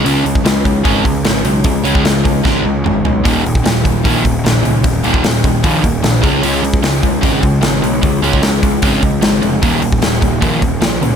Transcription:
<<
  \new Staff \with { instrumentName = "Overdriven electric guitar" } { \clef bass \time 4/4 \key des \mixolydian \tempo 4 = 150 <des aes des'>8 <des aes>8 <des aes>8 <des aes>8 <des aes des'>8 <des aes>8 <des aes>8 <des aes>8 | <des aes>8 <des aes des'>8 <des aes>8 <des aes>8 <des aes des'>8 <des aes>8 <des aes>8 <des aes>8 | <ees, bes, ees>8 <ees, bes,>8 <ees, bes,>8 <ees, bes,>8 <ees, bes, ees>8 <ees, bes,>8 <ees, bes,>8 <ees, bes,>8 | <ees, bes,>8 <ees, bes, ees>8 <ees, bes,>8 <ees, bes,>8 <ees, bes, ees>8 <ees, bes,>8 <ees, bes,>8 <des aes des'>8 |
<des aes des'>8 <des aes>8 <des aes>8 <des aes>8 <des aes des'>8 <des aes>8 <des aes>8 <des aes>8 | <des aes>8 <des aes des'>8 <des aes>8 <des aes>8 <des aes des'>8 <des aes>8 <des aes>8 <des aes>8 | <ees, bes, ees>8 <ees, bes,>8 <ees, bes,>8 <ees, bes,>8 <ees, bes, ees>8 <ees, bes,>8 <ees, bes,>8 <ees, bes,>8 | }
  \new Staff \with { instrumentName = "Picked electric bass" } { \clef bass \time 4/4 \key des \mixolydian des,8 des,8 des,4 aes,,8 des,8 aes,,8 ces,8 | des,8 des,8 des,4 aes,,8 des,8 aes,,8 ces,8 | ees,,8 ees,,8 ees,,4 bes,,8 ees,,8 bes,,8 des,8 | ees,,8 ees,,8 ees,,4 bes,,8 ees,,8 bes,,8 des,8 |
des,8 des,8 des,4 aes,,8 des,8 aes,,8 ces,8 | des,8 des,8 des,4 aes,,8 des,8 aes,,8 f,,8 | ees,,8 ees,,8 ees,,4 bes,,8 ees,,8 bes,,8 des,8 | }
  \new DrumStaff \with { instrumentName = "Drums" } \drummode { \time 4/4 hho8 hho16 bd16 <hho sn>8 <hho bd>8 <hho bd>8 <hho bd>8 <hho sn>8 hho8 | <hho bd>8 hho16 bd16 <hho sn>8 <hho bd>8 <bd sn>4 toml8 tomfh8 | <hho bd>8 hho16 bd16 <hho sn>8 <hho bd>8 <hho bd>8 <hho bd>8 <hho sn>8 hho8 | <hho bd>8 hho16 bd16 <hho sn>8 <hho bd>8 <hho bd>8 <hho bd>8 <hho sn>8 <hho bd>8 |
hho8 hho16 bd16 <hho sn>8 <hho bd>8 <hho bd>8 <hho bd>8 <hho sn>8 hho8 | <hho bd>8 hho16 bd16 <hho sn>8 <hho bd>8 <hho bd>8 <hho bd>8 <hho sn>8 hho8 | <hho bd>8 hho16 bd16 <hho sn>8 <hho bd>8 <hho bd>8 <hho bd>8 <hho sn>8 hho8 | }
>>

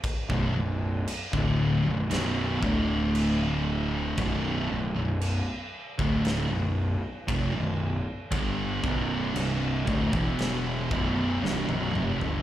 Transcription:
<<
  \new Staff \with { instrumentName = "Distorted electric guitar" } { \clef bass \time 4/4 \key d \lydian \tempo 4 = 58 r16 <b,, fis,>16 <b,, fis,>8 r16 <d, a, d>8 <b,, fis,>16 <b,, fis, b,>8 <d, a, d>4. | <b,, fis, b,>8 <b,, fis,>16 <b,, fis,>8 r8 <d, a, d>8 <b,, fis,>8 r16 <eis, c>16 <b,, fis,>8 r16 | <g, d g>8 <b,, fis, b,>8 <c, g, c>8 <d, a,>16 <e, b, e>8. <b,, fis, b,>8 <c, g,>16 <b,, fis,>16 <eis, c>16 <g, d>16 | }
  \new Staff \with { instrumentName = "Distorted electric guitar" } { \clef bass \time 4/4 \key d \lydian r16 <b,, fis,>16 <b,, fis,>8 r16 <d, a, d>8 <b,, fis,>16 <b,, fis, b,>8 <d, a, d>4. | <b,, fis, b,>8 <b,, fis,>16 <b,, fis,>8 r8 <d, a, d>8 <b,, fis,>8 r16 <eis, c>16 <b,, fis,>8 r16 | <g, d g>8 <b,, fis, b,>8 <c, g, c>8 <d, a,>16 <e, b, e>8. <b,, fis, b,>8 <c, g,>16 <b,, fis,>16 <eis, c>16 <g, d>16 | }
  \new Staff \with { instrumentName = "Distorted electric guitar" } { \clef bass \time 4/4 \key d \lydian r16 <b,, fis,>16 <b,, fis,>8 r16 <d, a, d>8 <b,, fis,>16 <b,, fis, b,>8 <d, a, d>4. | <b,, fis, b,>8 <b,, fis,>16 <b,, fis,>8 r8 <d, a, d>8 <b,, fis,>8 r16 <eis, c>16 <b,, fis,>8 r16 | <g, d g>8 <b,, fis, b,>8 <c, g, c>8 <d, a,>16 <e, b, e>8. <b,, fis, b,>8 <c, g,>16 <b,, fis,>16 <eis, c>16 <g, d>16 | }
  \new Staff \with { instrumentName = "Fingered electric bass" } { \clef bass \time 4/4 \key d \lydian r16 b,,,16 b,,,8 r16 d,,8 b,,,16 b,,,8 d,,4. | b,,,8 b,,,16 b,,,8 r8 d,,8 b,,,8 r16 eis,,16 b,,,8 r16 | g,,8 b,,,8 c,,8 d,,16 e,,8. b,,,8 c,,16 b,,,16 eis,,16 g,,16 | }
  \new DrumStaff \with { instrumentName = "Drums" } \drummode { \time 4/4 <cymc bd>16 bd8. cymc16 bd8. <cymc sn>8 bd8 cymc4 | <cymc bd>4 cymc8. bd16 <cymc sn>4 <cymc bd>4 | <cymc bd>8 bd8 cymc8 bd16 bd16 <cymc sn>8 bd8 sn16 tommh16 toml16 tomfh16 | }
>>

